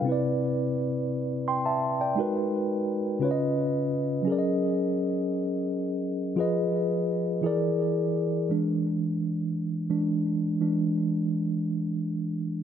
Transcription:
0.02 C3 C4
0.07 E4 B4
0.12 D5
1.48 G5 C6
1.66 E5 A5
2.01 D5 G5
2.15 G#3 D#4 F#4 A#4
2.20 B4
3.19 C#3 C#4 F4 B4
3.25 C#5
3.31 D#5
4.22 F#3 C#4
4.27 G#4 A#4
4.32 D5
4.38 D#5
6.36 F3 F4 G#4 B4
6.40 D#5
7.42 E3 E4 G#4
7.46 A#4 D5
8.49 E3 G#3 D4
9.90 E3 G#3 D4
10.61 E3 G#3 D4

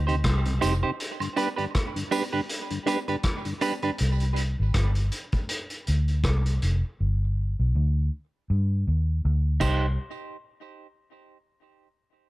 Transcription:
Already playing: D2
0.07 C3 D#4 G4 C5, closed hi-hat
0.24 C2, kick, cross-stick, closed hi-hat
0.45 C3, closed hi-hat
0.61 F1 G3 C4 D#4 G4 C5, closed hi-hat, tambourine
0.83 C3 D#4 G4 C5
1.00 closed hi-hat
1.20 G2 D3, closed hi-hat, high woodblock
1.36 G3 B3 D4 G4 B4, closed hi-hat, tambourine
1.56 G2 D3 D4 G4 B4, closed hi-hat
1.75 kick, cross-stick, closed hi-hat
1.96 G2 D3, closed hi-hat
2.11 G3 B3 D4 G4 B4, open hi-hat, tambourine
2.33 G2 D3 D4 G4 B4
2.49 closed hi-hat
2.70 G2 D3, closed hi-hat
2.86 G3 B3 D4 G4 B4, closed hi-hat, tambourine
3.08 G2 D3 D4 G4 B4, closed hi-hat
3.23 kick, cross-stick, closed hi-hat
3.45 G2 D3, closed hi-hat
3.61 G3 B3 D4 G4 B4, closed hi-hat, tambourine
3.82 G2 D3 D4 G4 B4, closed hi-hat
3.98 C2, closed hi-hat
4.20 closed hi-hat
4.36 closed hi-hat
4.60 G#1
4.74 G1, kick, cross-stick, closed hi-hat
4.95 closed hi-hat
5.12 closed hi-hat
5.32 kick, closed hi-hat
5.49 closed hi-hat
5.70 closed hi-hat
5.87 D2, closed hi-hat
6.08 closed hi-hat
6.24 C2, kick, cross-stick, closed hi-hat
6.46 closed hi-hat
6.62 F1, closed hi-hat
7.00 G1
7.59 B1
7.75 D2
8.50 G2
8.87 D#2
9.25 D2
9.60 C2 D#4 G4 C5, kick, crash, tambourine

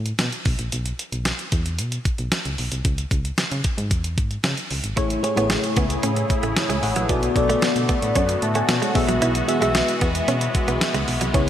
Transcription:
Already playing: A2
0.06 closed hi-hat
0.19 B2, snare, closed hi-hat
0.32 closed hi-hat
0.45 B1, kick, open hi-hat
0.59 A#1, closed hi-hat
0.72 B1, closed hi-hat
0.86 closed hi-hat
0.99 closed hi-hat
1.12 B1, closed hi-hat
1.25 snare, closed hi-hat
1.39 closed hi-hat
1.52 E2, kick, closed hi-hat
1.66 closed hi-hat
1.79 B2, closed hi-hat
1.92 closed hi-hat
2.05 kick, closed hi-hat
2.18 B1, closed hi-hat
2.32 snare, closed hi-hat
2.45 C#2, closed hi-hat
2.58 B1, open hi-hat
2.72 C2, closed hi-hat
2.85 C#2, kick, closed hi-hat
2.98 closed hi-hat
3.11 C#2, kick, closed hi-hat
3.25 closed hi-hat
3.38 C#3, snare, closed hi-hat
3.51 C#3, closed hi-hat
3.64 kick, closed hi-hat
3.78 G#2, closed hi-hat
3.91 E2, kick, closed hi-hat
4.04 closed hi-hat
4.18 G#2, kick, closed hi-hat
4.31 closed hi-hat
4.44 C#3, snare, closed hi-hat
4.57 closed hi-hat
4.71 C#2, open hi-hat
4.84 G#1, closed hi-hat
4.96 A1 A2 C#3 A3 E4 G#4 C#5, kick, closed hi-hat
5.10 closed hi-hat
5.23 A3 E4 G#4 C#5, muted clean electric guitar stroke, closed hi-hat
5.36 A1 A3 B3 E4 G#4 C#5, closed hi-hat
5.50 snare, closed hi-hat
5.64 closed hi-hat
5.76 C#2 B3, kick, closed hi-hat
5.90 closed hi-hat
6.03 A2 C#4, closed hi-hat
6.16 muted clean electric guitar stroke, closed hi-hat
6.30 kick, closed hi-hat
6.43 A1 A3, closed hi-hat
6.57 snare, closed hi-hat
6.69 C#2 G#3 C#5 G#5, closed hi-hat
6.83 A1 C#5 F#5, muted clean electric guitar stroke, open hi-hat
6.96 A#1 F#3 B4 E5, closed hi-hat
7.09 B1 B2 D3 B3 F#4 A4 D5, kick, closed hi-hat
7.23 closed hi-hat
7.36 B1 B3 F#4 A4 D5, muted clean electric guitar stroke, kick, closed hi-hat
7.49 A3 B3 F#4 A4 D5, closed hi-hat
7.62 B2, snare, closed hi-hat
7.76 B2, closed hi-hat
7.89 B3, kick, closed hi-hat
8.02 A2, closed hi-hat
8.15 F#2 C#4, kick, closed hi-hat
8.29 muted clean electric guitar stroke, closed hi-hat
8.42 A2 E5 A5, closed hi-hat
8.55 A3 D5 G#5, closed hi-hat
8.69 B2, snare, closed hi-hat
8.82 G#3 C#5 F#5, closed hi-hat
8.94 B1 B2 E3 G#3 B3 F#4 G#4 E5, muted clean electric guitar stroke, kick, open hi-hat
9.08 A#1 F#3, closed hi-hat
9.22 B1 E4, closed hi-hat
9.35 closed hi-hat
9.47 B3 F#4 G#4 E5, muted clean electric guitar stroke, closed hi-hat
9.60 B1 G#3 B3 F#4 G#4 E5, closed hi-hat
9.75 snare, closed hi-hat
9.88 closed hi-hat
10.01 E2 B3, kick, closed hi-hat
10.15 closed hi-hat
10.28 B2 C#4, closed hi-hat
10.41 muted clean electric guitar stroke, closed hi-hat
10.55 kick, closed hi-hat
10.68 B1 B3, closed hi-hat
10.81 snare, closed hi-hat
10.94 C#2 G#3, closed hi-hat
11.08 B1, muted clean electric guitar stroke, open hi-hat
11.21 C2 F#3, closed hi-hat
11.33 C#2 C#3 B3 C#4 E4 G#4 C#5, kick, closed hi-hat

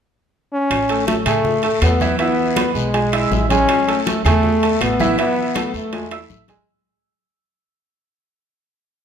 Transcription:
0.53 C#4
0.70 A1, high bongo, high conga, high timbale, long guiro, claves
0.89 A3 A4 A5, high bongo, high conga, high timbale
1.07 A3, high bongo, high conga, high timbale, short guiro
1.26 A2 A3 G#4 G#5, high bongo, high conga, low conga, high timbale, short guiro, claves
1.45 high bongo, high conga, low conga, long guiro
1.63 A3 A4 A5, high conga, high timbale
1.81 E2 B3, high bongo, low bongo, high conga, high timbale, low timbale, short guiro, claves
2.00 E3 E4 E5, high bongo, high conga, short guiro
2.19 E3 B3 E4 E5, high bongo, high conga, high timbale, long guiro
2.38 high bongo, high conga
2.56 B3 B4 B5, high bongo, high conga, high timbale, short guiro, claves
2.75 B1 G#3, high conga, short guiro
2.94 G#3 G#4 G#5, high bongo, high conga, high timbale, long guiro
3.12 E4 E5 E6, high bongo, high conga, high timbale, claves
3.31 A1, high bongo, low bongo, high conga, short guiro
3.49 G#3 C#4 G#4 G#5, high bongo, high conga, high timbale, short guiro
3.68 high bongo, high conga, high timbale, long guiro, claves
3.87 A3 A4 A5, high bongo, high conga, high timbale
4.06 A3, high bongo, high conga, high timbale, short guiro
4.25 E2 A3 G#4 G#5, high bongo, high conga, low conga, high timbale, short guiro, claves
4.43 high bongo, high conga, long guiro
4.63 A3 A4 A5, high conga, high timbale
4.81 A1 B3, high bongo, low bongo, high conga, high timbale, short guiro, claves
5.00 E3 E4 E5, high bongo, high conga, short guiro
5.18 E3 B3 E4 E5, high bongo, high conga, high timbale, long guiro
5.37 high bongo, high conga
5.55 A3 A4 A5, high bongo, high conga, high timbale, short guiro, claves
5.74 E2 A3, high conga, short guiro
5.93 G#3 G#4 G#5, high bongo, high conga, high timbale, long guiro
6.11 E4 E5 E6, high bongo, high conga, high timbale, claves
6.30 A1, high conga, short guiro
6.48 G#3 G#4 G#5, low bongo, high conga, high timbale, short guiro

